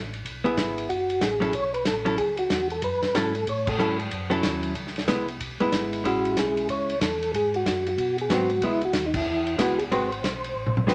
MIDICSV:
0, 0, Header, 1, 5, 480
1, 0, Start_track
1, 0, Key_signature, 4, "minor"
1, 0, Tempo, 322234
1, 1318, Time_signature, 4, 2, 24, 8
1, 16304, End_track
2, 0, Start_track
2, 0, Title_t, "Tonewheel organ"
2, 0, Program_c, 0, 16
2, 1328, Note_on_c, 0, 66, 87
2, 1817, Note_off_c, 0, 66, 0
2, 1819, Note_on_c, 0, 68, 81
2, 2303, Note_off_c, 0, 68, 0
2, 2305, Note_on_c, 0, 73, 98
2, 2571, Note_off_c, 0, 73, 0
2, 2591, Note_on_c, 0, 71, 86
2, 2753, Note_off_c, 0, 71, 0
2, 2780, Note_on_c, 0, 69, 93
2, 3216, Note_off_c, 0, 69, 0
2, 3247, Note_on_c, 0, 68, 95
2, 3521, Note_off_c, 0, 68, 0
2, 3555, Note_on_c, 0, 66, 81
2, 3993, Note_off_c, 0, 66, 0
2, 4046, Note_on_c, 0, 69, 80
2, 4201, Note_off_c, 0, 69, 0
2, 4231, Note_on_c, 0, 71, 91
2, 4702, Note_on_c, 0, 69, 87
2, 4708, Note_off_c, 0, 71, 0
2, 5184, Note_off_c, 0, 69, 0
2, 5202, Note_on_c, 0, 73, 91
2, 5487, Note_off_c, 0, 73, 0
2, 5495, Note_on_c, 0, 69, 88
2, 5923, Note_off_c, 0, 69, 0
2, 9037, Note_on_c, 0, 66, 87
2, 9402, Note_off_c, 0, 66, 0
2, 9420, Note_on_c, 0, 66, 69
2, 9488, Note_off_c, 0, 66, 0
2, 9517, Note_on_c, 0, 68, 88
2, 9945, Note_off_c, 0, 68, 0
2, 9984, Note_on_c, 0, 73, 96
2, 10418, Note_off_c, 0, 73, 0
2, 10463, Note_on_c, 0, 69, 93
2, 10897, Note_off_c, 0, 69, 0
2, 10955, Note_on_c, 0, 68, 98
2, 11244, Note_off_c, 0, 68, 0
2, 11261, Note_on_c, 0, 66, 90
2, 11420, Note_off_c, 0, 66, 0
2, 11438, Note_on_c, 0, 66, 88
2, 11725, Note_off_c, 0, 66, 0
2, 11745, Note_on_c, 0, 66, 89
2, 12169, Note_off_c, 0, 66, 0
2, 12235, Note_on_c, 0, 68, 79
2, 12376, Note_off_c, 0, 68, 0
2, 12398, Note_on_c, 0, 66, 85
2, 12871, Note_off_c, 0, 66, 0
2, 12883, Note_on_c, 0, 64, 86
2, 13140, Note_off_c, 0, 64, 0
2, 13182, Note_on_c, 0, 66, 97
2, 13486, Note_off_c, 0, 66, 0
2, 13497, Note_on_c, 0, 63, 61
2, 13621, Note_off_c, 0, 63, 0
2, 13642, Note_on_c, 0, 64, 92
2, 14244, Note_off_c, 0, 64, 0
2, 14306, Note_on_c, 0, 66, 88
2, 14569, Note_on_c, 0, 68, 84
2, 14599, Note_off_c, 0, 66, 0
2, 14652, Note_off_c, 0, 68, 0
2, 14775, Note_on_c, 0, 72, 84
2, 16146, Note_off_c, 0, 72, 0
2, 16304, End_track
3, 0, Start_track
3, 0, Title_t, "Hollow-body jazz guitar"
3, 0, Program_c, 1, 26
3, 660, Note_on_c, 1, 59, 68
3, 669, Note_on_c, 1, 64, 72
3, 680, Note_on_c, 1, 68, 64
3, 1283, Note_off_c, 1, 59, 0
3, 1288, Note_off_c, 1, 64, 0
3, 1294, Note_off_c, 1, 68, 0
3, 2088, Note_on_c, 1, 54, 57
3, 2103, Note_on_c, 1, 61, 68
3, 2107, Note_on_c, 1, 64, 69
3, 2110, Note_on_c, 1, 69, 64
3, 2256, Note_off_c, 1, 54, 0
3, 2263, Note_off_c, 1, 61, 0
3, 2265, Note_off_c, 1, 64, 0
3, 2267, Note_off_c, 1, 69, 0
3, 3054, Note_on_c, 1, 54, 58
3, 3060, Note_on_c, 1, 61, 62
3, 3064, Note_on_c, 1, 64, 60
3, 3068, Note_on_c, 1, 69, 58
3, 3219, Note_off_c, 1, 54, 0
3, 3221, Note_off_c, 1, 61, 0
3, 3224, Note_off_c, 1, 64, 0
3, 3226, Note_off_c, 1, 69, 0
3, 4693, Note_on_c, 1, 54, 54
3, 4700, Note_on_c, 1, 61, 60
3, 4709, Note_on_c, 1, 64, 65
3, 4709, Note_on_c, 1, 69, 66
3, 4954, Note_off_c, 1, 54, 0
3, 4958, Note_off_c, 1, 61, 0
3, 4962, Note_off_c, 1, 69, 0
3, 4963, Note_off_c, 1, 64, 0
3, 5640, Note_on_c, 1, 54, 61
3, 5651, Note_on_c, 1, 61, 63
3, 5653, Note_on_c, 1, 64, 73
3, 5656, Note_on_c, 1, 69, 64
3, 5908, Note_off_c, 1, 54, 0
3, 5913, Note_off_c, 1, 61, 0
3, 5914, Note_off_c, 1, 64, 0
3, 5916, Note_off_c, 1, 69, 0
3, 6405, Note_on_c, 1, 54, 75
3, 6412, Note_on_c, 1, 61, 79
3, 6420, Note_on_c, 1, 64, 80
3, 6423, Note_on_c, 1, 69, 88
3, 7035, Note_off_c, 1, 54, 0
3, 7039, Note_off_c, 1, 61, 0
3, 7043, Note_off_c, 1, 64, 0
3, 7044, Note_off_c, 1, 69, 0
3, 7565, Note_on_c, 1, 56, 62
3, 7568, Note_on_c, 1, 59, 65
3, 7583, Note_on_c, 1, 64, 65
3, 7830, Note_off_c, 1, 56, 0
3, 7832, Note_off_c, 1, 59, 0
3, 7839, Note_off_c, 1, 64, 0
3, 8348, Note_on_c, 1, 56, 67
3, 8355, Note_on_c, 1, 59, 70
3, 8370, Note_on_c, 1, 64, 73
3, 8967, Note_off_c, 1, 56, 0
3, 8970, Note_off_c, 1, 59, 0
3, 8978, Note_off_c, 1, 64, 0
3, 8997, Note_on_c, 1, 56, 60
3, 9014, Note_on_c, 1, 64, 59
3, 9016, Note_on_c, 1, 61, 64
3, 10328, Note_off_c, 1, 56, 0
3, 10337, Note_off_c, 1, 64, 0
3, 10338, Note_off_c, 1, 61, 0
3, 12379, Note_on_c, 1, 54, 61
3, 12385, Note_on_c, 1, 59, 55
3, 12397, Note_on_c, 1, 60, 72
3, 12637, Note_off_c, 1, 54, 0
3, 12640, Note_off_c, 1, 59, 0
3, 12646, Note_off_c, 1, 60, 0
3, 12861, Note_on_c, 1, 56, 52
3, 12862, Note_on_c, 1, 59, 48
3, 12881, Note_on_c, 1, 64, 57
3, 13118, Note_off_c, 1, 56, 0
3, 13119, Note_off_c, 1, 59, 0
3, 13128, Note_off_c, 1, 64, 0
3, 14277, Note_on_c, 1, 56, 51
3, 14292, Note_on_c, 1, 59, 59
3, 14307, Note_on_c, 1, 64, 64
3, 14546, Note_off_c, 1, 56, 0
3, 14553, Note_off_c, 1, 59, 0
3, 14561, Note_off_c, 1, 64, 0
3, 14771, Note_on_c, 1, 56, 54
3, 14771, Note_on_c, 1, 60, 57
3, 14780, Note_on_c, 1, 66, 62
3, 14784, Note_on_c, 1, 71, 62
3, 15033, Note_off_c, 1, 56, 0
3, 15033, Note_off_c, 1, 60, 0
3, 15037, Note_off_c, 1, 66, 0
3, 15039, Note_off_c, 1, 71, 0
3, 16192, Note_on_c, 1, 56, 54
3, 16201, Note_on_c, 1, 60, 51
3, 16209, Note_on_c, 1, 66, 58
3, 16214, Note_on_c, 1, 71, 57
3, 16304, Note_off_c, 1, 56, 0
3, 16304, Note_off_c, 1, 60, 0
3, 16304, Note_off_c, 1, 66, 0
3, 16304, Note_off_c, 1, 71, 0
3, 16304, End_track
4, 0, Start_track
4, 0, Title_t, "Tonewheel organ"
4, 0, Program_c, 2, 16
4, 0, Note_on_c, 2, 33, 77
4, 343, Note_off_c, 2, 33, 0
4, 372, Note_on_c, 2, 35, 74
4, 831, Note_off_c, 2, 35, 0
4, 842, Note_on_c, 2, 32, 89
4, 1306, Note_off_c, 2, 32, 0
4, 1324, Note_on_c, 2, 30, 73
4, 1787, Note_off_c, 2, 30, 0
4, 1794, Note_on_c, 2, 33, 86
4, 2262, Note_off_c, 2, 33, 0
4, 2278, Note_on_c, 2, 35, 82
4, 2744, Note_off_c, 2, 35, 0
4, 2762, Note_on_c, 2, 33, 91
4, 3226, Note_off_c, 2, 33, 0
4, 3243, Note_on_c, 2, 37, 85
4, 3706, Note_off_c, 2, 37, 0
4, 3721, Note_on_c, 2, 40, 79
4, 4185, Note_off_c, 2, 40, 0
4, 4203, Note_on_c, 2, 42, 82
4, 4476, Note_off_c, 2, 42, 0
4, 4493, Note_on_c, 2, 42, 39
4, 4585, Note_off_c, 2, 42, 0
4, 4685, Note_on_c, 2, 44, 95
4, 5147, Note_off_c, 2, 44, 0
4, 5166, Note_on_c, 2, 45, 81
4, 5627, Note_off_c, 2, 45, 0
4, 5627, Note_on_c, 2, 44, 79
4, 6098, Note_off_c, 2, 44, 0
4, 6122, Note_on_c, 2, 42, 80
4, 6585, Note_off_c, 2, 42, 0
4, 6607, Note_on_c, 2, 39, 94
4, 7068, Note_off_c, 2, 39, 0
4, 7081, Note_on_c, 2, 37, 81
4, 7545, Note_off_c, 2, 37, 0
4, 7558, Note_on_c, 2, 36, 80
4, 8023, Note_off_c, 2, 36, 0
4, 8041, Note_on_c, 2, 35, 86
4, 8317, Note_off_c, 2, 35, 0
4, 8344, Note_on_c, 2, 35, 36
4, 8433, Note_off_c, 2, 35, 0
4, 8518, Note_on_c, 2, 32, 90
4, 8983, Note_off_c, 2, 32, 0
4, 9003, Note_on_c, 2, 33, 82
4, 9466, Note_off_c, 2, 33, 0
4, 9481, Note_on_c, 2, 35, 89
4, 9945, Note_off_c, 2, 35, 0
4, 9963, Note_on_c, 2, 37, 77
4, 10426, Note_off_c, 2, 37, 0
4, 10442, Note_on_c, 2, 40, 90
4, 10906, Note_off_c, 2, 40, 0
4, 10922, Note_on_c, 2, 44, 76
4, 11385, Note_off_c, 2, 44, 0
4, 11398, Note_on_c, 2, 42, 81
4, 11863, Note_off_c, 2, 42, 0
4, 11880, Note_on_c, 2, 47, 90
4, 12344, Note_off_c, 2, 47, 0
4, 12353, Note_on_c, 2, 44, 98
4, 12821, Note_off_c, 2, 44, 0
4, 12832, Note_on_c, 2, 37, 84
4, 13300, Note_off_c, 2, 37, 0
4, 13315, Note_on_c, 2, 39, 82
4, 13755, Note_on_c, 2, 40, 82
4, 13782, Note_off_c, 2, 39, 0
4, 14241, Note_off_c, 2, 40, 0
4, 14272, Note_on_c, 2, 37, 97
4, 14740, Note_off_c, 2, 37, 0
4, 14755, Note_on_c, 2, 32, 86
4, 15221, Note_off_c, 2, 32, 0
4, 15234, Note_on_c, 2, 35, 89
4, 15695, Note_on_c, 2, 33, 78
4, 15701, Note_off_c, 2, 35, 0
4, 16164, Note_on_c, 2, 32, 96
4, 16171, Note_off_c, 2, 33, 0
4, 16304, Note_off_c, 2, 32, 0
4, 16304, End_track
5, 0, Start_track
5, 0, Title_t, "Drums"
5, 200, Note_on_c, 9, 51, 43
5, 349, Note_off_c, 9, 51, 0
5, 373, Note_on_c, 9, 36, 22
5, 380, Note_on_c, 9, 51, 61
5, 522, Note_off_c, 9, 36, 0
5, 529, Note_off_c, 9, 51, 0
5, 681, Note_on_c, 9, 51, 43
5, 830, Note_off_c, 9, 51, 0
5, 850, Note_on_c, 9, 36, 23
5, 853, Note_on_c, 9, 44, 66
5, 853, Note_on_c, 9, 51, 69
5, 855, Note_on_c, 9, 38, 72
5, 999, Note_off_c, 9, 36, 0
5, 1002, Note_off_c, 9, 44, 0
5, 1002, Note_off_c, 9, 51, 0
5, 1004, Note_off_c, 9, 38, 0
5, 1159, Note_on_c, 9, 51, 49
5, 1308, Note_off_c, 9, 51, 0
5, 1330, Note_on_c, 9, 36, 23
5, 1337, Note_on_c, 9, 51, 53
5, 1479, Note_off_c, 9, 36, 0
5, 1486, Note_off_c, 9, 51, 0
5, 1634, Note_on_c, 9, 51, 44
5, 1783, Note_off_c, 9, 51, 0
5, 1806, Note_on_c, 9, 44, 62
5, 1806, Note_on_c, 9, 51, 62
5, 1807, Note_on_c, 9, 38, 65
5, 1808, Note_on_c, 9, 36, 16
5, 1955, Note_off_c, 9, 44, 0
5, 1955, Note_off_c, 9, 51, 0
5, 1956, Note_off_c, 9, 38, 0
5, 1957, Note_off_c, 9, 36, 0
5, 2112, Note_on_c, 9, 51, 44
5, 2261, Note_off_c, 9, 51, 0
5, 2279, Note_on_c, 9, 51, 61
5, 2287, Note_on_c, 9, 36, 19
5, 2428, Note_off_c, 9, 51, 0
5, 2436, Note_off_c, 9, 36, 0
5, 2594, Note_on_c, 9, 51, 46
5, 2743, Note_off_c, 9, 51, 0
5, 2759, Note_on_c, 9, 44, 58
5, 2759, Note_on_c, 9, 51, 73
5, 2761, Note_on_c, 9, 38, 72
5, 2766, Note_on_c, 9, 36, 26
5, 2908, Note_off_c, 9, 44, 0
5, 2908, Note_off_c, 9, 51, 0
5, 2910, Note_off_c, 9, 38, 0
5, 2915, Note_off_c, 9, 36, 0
5, 3065, Note_on_c, 9, 51, 49
5, 3214, Note_off_c, 9, 51, 0
5, 3245, Note_on_c, 9, 51, 58
5, 3250, Note_on_c, 9, 36, 25
5, 3394, Note_off_c, 9, 51, 0
5, 3399, Note_off_c, 9, 36, 0
5, 3535, Note_on_c, 9, 51, 48
5, 3683, Note_off_c, 9, 51, 0
5, 3725, Note_on_c, 9, 44, 50
5, 3725, Note_on_c, 9, 51, 66
5, 3726, Note_on_c, 9, 36, 17
5, 3727, Note_on_c, 9, 38, 67
5, 3874, Note_off_c, 9, 44, 0
5, 3874, Note_off_c, 9, 51, 0
5, 3875, Note_off_c, 9, 36, 0
5, 3875, Note_off_c, 9, 38, 0
5, 4025, Note_on_c, 9, 51, 44
5, 4174, Note_off_c, 9, 51, 0
5, 4200, Note_on_c, 9, 51, 62
5, 4207, Note_on_c, 9, 36, 25
5, 4349, Note_off_c, 9, 51, 0
5, 4356, Note_off_c, 9, 36, 0
5, 4506, Note_on_c, 9, 51, 45
5, 4507, Note_on_c, 9, 38, 44
5, 4655, Note_off_c, 9, 51, 0
5, 4656, Note_off_c, 9, 38, 0
5, 4689, Note_on_c, 9, 36, 19
5, 4689, Note_on_c, 9, 44, 53
5, 4689, Note_on_c, 9, 51, 73
5, 4690, Note_on_c, 9, 38, 66
5, 4838, Note_off_c, 9, 36, 0
5, 4838, Note_off_c, 9, 44, 0
5, 4838, Note_off_c, 9, 51, 0
5, 4839, Note_off_c, 9, 38, 0
5, 4986, Note_on_c, 9, 51, 49
5, 5135, Note_off_c, 9, 51, 0
5, 5169, Note_on_c, 9, 51, 57
5, 5170, Note_on_c, 9, 36, 23
5, 5318, Note_off_c, 9, 51, 0
5, 5319, Note_off_c, 9, 36, 0
5, 5467, Note_on_c, 9, 49, 70
5, 5472, Note_on_c, 9, 36, 83
5, 5616, Note_off_c, 9, 49, 0
5, 5621, Note_off_c, 9, 36, 0
5, 5650, Note_on_c, 9, 44, 64
5, 5799, Note_off_c, 9, 44, 0
5, 5951, Note_on_c, 9, 51, 44
5, 6099, Note_off_c, 9, 51, 0
5, 6126, Note_on_c, 9, 51, 61
5, 6130, Note_on_c, 9, 36, 21
5, 6275, Note_off_c, 9, 51, 0
5, 6279, Note_off_c, 9, 36, 0
5, 6420, Note_on_c, 9, 51, 50
5, 6569, Note_off_c, 9, 51, 0
5, 6600, Note_on_c, 9, 44, 57
5, 6600, Note_on_c, 9, 51, 77
5, 6602, Note_on_c, 9, 38, 73
5, 6607, Note_on_c, 9, 36, 26
5, 6749, Note_off_c, 9, 44, 0
5, 6749, Note_off_c, 9, 51, 0
5, 6751, Note_off_c, 9, 38, 0
5, 6756, Note_off_c, 9, 36, 0
5, 6893, Note_on_c, 9, 51, 49
5, 7042, Note_off_c, 9, 51, 0
5, 7078, Note_on_c, 9, 51, 56
5, 7084, Note_on_c, 9, 36, 23
5, 7227, Note_off_c, 9, 51, 0
5, 7233, Note_off_c, 9, 36, 0
5, 7253, Note_on_c, 9, 38, 25
5, 7385, Note_on_c, 9, 51, 43
5, 7402, Note_off_c, 9, 38, 0
5, 7419, Note_on_c, 9, 38, 43
5, 7534, Note_off_c, 9, 51, 0
5, 7564, Note_on_c, 9, 44, 53
5, 7564, Note_on_c, 9, 51, 66
5, 7565, Note_off_c, 9, 38, 0
5, 7565, Note_on_c, 9, 38, 64
5, 7570, Note_on_c, 9, 36, 20
5, 7713, Note_off_c, 9, 44, 0
5, 7713, Note_off_c, 9, 51, 0
5, 7714, Note_off_c, 9, 38, 0
5, 7719, Note_off_c, 9, 36, 0
5, 7869, Note_on_c, 9, 51, 44
5, 8018, Note_off_c, 9, 51, 0
5, 8050, Note_on_c, 9, 51, 66
5, 8052, Note_on_c, 9, 36, 22
5, 8199, Note_off_c, 9, 51, 0
5, 8201, Note_off_c, 9, 36, 0
5, 8345, Note_on_c, 9, 51, 46
5, 8494, Note_off_c, 9, 51, 0
5, 8525, Note_on_c, 9, 44, 70
5, 8525, Note_on_c, 9, 51, 69
5, 8527, Note_on_c, 9, 38, 72
5, 8530, Note_on_c, 9, 36, 24
5, 8674, Note_off_c, 9, 44, 0
5, 8674, Note_off_c, 9, 51, 0
5, 8676, Note_off_c, 9, 38, 0
5, 8679, Note_off_c, 9, 36, 0
5, 8830, Note_on_c, 9, 51, 50
5, 8979, Note_off_c, 9, 51, 0
5, 9011, Note_on_c, 9, 36, 23
5, 9015, Note_on_c, 9, 51, 60
5, 9160, Note_off_c, 9, 36, 0
5, 9164, Note_off_c, 9, 51, 0
5, 9311, Note_on_c, 9, 51, 46
5, 9460, Note_off_c, 9, 51, 0
5, 9485, Note_on_c, 9, 44, 64
5, 9485, Note_on_c, 9, 51, 68
5, 9486, Note_on_c, 9, 38, 64
5, 9489, Note_on_c, 9, 36, 22
5, 9634, Note_off_c, 9, 44, 0
5, 9634, Note_off_c, 9, 51, 0
5, 9635, Note_off_c, 9, 38, 0
5, 9638, Note_off_c, 9, 36, 0
5, 9789, Note_on_c, 9, 51, 49
5, 9938, Note_off_c, 9, 51, 0
5, 9961, Note_on_c, 9, 51, 61
5, 9964, Note_on_c, 9, 36, 19
5, 10110, Note_off_c, 9, 51, 0
5, 10113, Note_off_c, 9, 36, 0
5, 10270, Note_on_c, 9, 51, 48
5, 10419, Note_off_c, 9, 51, 0
5, 10444, Note_on_c, 9, 36, 20
5, 10446, Note_on_c, 9, 44, 55
5, 10446, Note_on_c, 9, 51, 78
5, 10447, Note_on_c, 9, 38, 73
5, 10593, Note_off_c, 9, 36, 0
5, 10595, Note_off_c, 9, 44, 0
5, 10595, Note_off_c, 9, 51, 0
5, 10596, Note_off_c, 9, 38, 0
5, 10762, Note_on_c, 9, 51, 49
5, 10911, Note_off_c, 9, 51, 0
5, 10929, Note_on_c, 9, 36, 23
5, 10938, Note_on_c, 9, 51, 65
5, 11078, Note_off_c, 9, 36, 0
5, 11087, Note_off_c, 9, 51, 0
5, 11233, Note_on_c, 9, 51, 45
5, 11382, Note_off_c, 9, 51, 0
5, 11405, Note_on_c, 9, 36, 25
5, 11412, Note_on_c, 9, 44, 52
5, 11412, Note_on_c, 9, 51, 60
5, 11414, Note_on_c, 9, 38, 64
5, 11554, Note_off_c, 9, 36, 0
5, 11561, Note_off_c, 9, 44, 0
5, 11561, Note_off_c, 9, 51, 0
5, 11563, Note_off_c, 9, 38, 0
5, 11715, Note_on_c, 9, 51, 47
5, 11864, Note_off_c, 9, 51, 0
5, 11886, Note_on_c, 9, 36, 23
5, 11890, Note_on_c, 9, 51, 59
5, 12035, Note_off_c, 9, 36, 0
5, 12039, Note_off_c, 9, 51, 0
5, 12187, Note_on_c, 9, 51, 48
5, 12336, Note_off_c, 9, 51, 0
5, 12361, Note_on_c, 9, 36, 26
5, 12362, Note_on_c, 9, 44, 54
5, 12362, Note_on_c, 9, 51, 73
5, 12364, Note_on_c, 9, 38, 71
5, 12510, Note_off_c, 9, 36, 0
5, 12511, Note_off_c, 9, 44, 0
5, 12511, Note_off_c, 9, 51, 0
5, 12513, Note_off_c, 9, 38, 0
5, 12655, Note_on_c, 9, 51, 47
5, 12804, Note_off_c, 9, 51, 0
5, 12836, Note_on_c, 9, 36, 25
5, 12836, Note_on_c, 9, 51, 61
5, 12985, Note_off_c, 9, 36, 0
5, 12985, Note_off_c, 9, 51, 0
5, 13128, Note_on_c, 9, 51, 45
5, 13277, Note_off_c, 9, 51, 0
5, 13305, Note_on_c, 9, 44, 60
5, 13305, Note_on_c, 9, 51, 68
5, 13307, Note_on_c, 9, 38, 72
5, 13316, Note_on_c, 9, 36, 17
5, 13454, Note_off_c, 9, 44, 0
5, 13454, Note_off_c, 9, 51, 0
5, 13456, Note_off_c, 9, 38, 0
5, 13465, Note_off_c, 9, 36, 0
5, 13613, Note_on_c, 9, 49, 77
5, 13615, Note_on_c, 9, 36, 89
5, 13762, Note_off_c, 9, 49, 0
5, 13763, Note_off_c, 9, 36, 0
5, 14101, Note_on_c, 9, 51, 45
5, 14250, Note_off_c, 9, 51, 0
5, 14281, Note_on_c, 9, 36, 22
5, 14282, Note_on_c, 9, 44, 57
5, 14282, Note_on_c, 9, 51, 77
5, 14283, Note_on_c, 9, 38, 73
5, 14430, Note_off_c, 9, 36, 0
5, 14431, Note_off_c, 9, 44, 0
5, 14431, Note_off_c, 9, 51, 0
5, 14432, Note_off_c, 9, 38, 0
5, 14588, Note_on_c, 9, 51, 49
5, 14737, Note_off_c, 9, 51, 0
5, 14764, Note_on_c, 9, 36, 18
5, 14773, Note_on_c, 9, 51, 61
5, 14913, Note_off_c, 9, 36, 0
5, 14922, Note_off_c, 9, 51, 0
5, 15077, Note_on_c, 9, 51, 43
5, 15226, Note_off_c, 9, 51, 0
5, 15242, Note_on_c, 9, 36, 22
5, 15253, Note_on_c, 9, 44, 58
5, 15253, Note_on_c, 9, 51, 63
5, 15255, Note_on_c, 9, 38, 64
5, 15391, Note_off_c, 9, 36, 0
5, 15402, Note_off_c, 9, 44, 0
5, 15402, Note_off_c, 9, 51, 0
5, 15404, Note_off_c, 9, 38, 0
5, 15554, Note_on_c, 9, 51, 49
5, 15703, Note_off_c, 9, 51, 0
5, 15887, Note_on_c, 9, 47, 59
5, 16036, Note_off_c, 9, 47, 0
5, 16044, Note_on_c, 9, 47, 78
5, 16193, Note_off_c, 9, 47, 0
5, 16208, Note_on_c, 9, 44, 69
5, 16210, Note_on_c, 9, 38, 64
5, 16304, Note_off_c, 9, 38, 0
5, 16304, Note_off_c, 9, 44, 0
5, 16304, End_track
0, 0, End_of_file